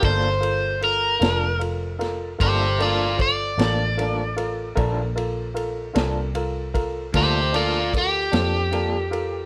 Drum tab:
RD |xxxxxxxxxxxx|xxxxxxxxxxxx|
SD |---o-o---o--|---o-----o--|
BD |o-----o-o---|o----oo-o---|